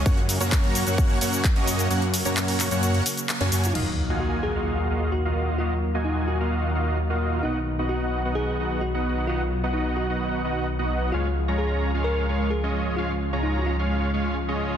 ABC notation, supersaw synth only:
X:1
M:4/4
L:1/16
Q:1/4=130
K:Ebm
V:1 name="Supersaw synth"
[B,DGdg] z2 [B,DGdb]4 [B,DGdg]3 [B,DGdg]2 z [B,DGde]3 | [B,DGdg] z2 [B,DGdb]4 [B,DGdg]3 z3 [B,DGda] [B,DGda]2 | [B,FGef] z2 [B,FGea]4 [B,FGef]3 [B,FGef]2 z [B,FGef]3 | [B,FGef] z2 [B,FGea]4 [B,FGef]3 [B,FGef]2 z [B,FGef]3 |
[=B,^D^F^d^f] z2 [B,DFdf]4 [B,DFdf]3 [B,DFdf]2 z [B,DFdf]3 | [=B,^D^F^d^f] z2 [B,DFdf]4 [B,DFdf]3 [B,DFdf]2 z [B,DFdf]3 | [A,DFdf] z2 [A,DFdb]4 [A,DFdf]3 [A,DFdf]2 z [A,DFde]3 | [A,DFdf] z2 [A,DFdb]4 [A,DFdf]3 [A,DFdf]2 z [A,DFde]3 |]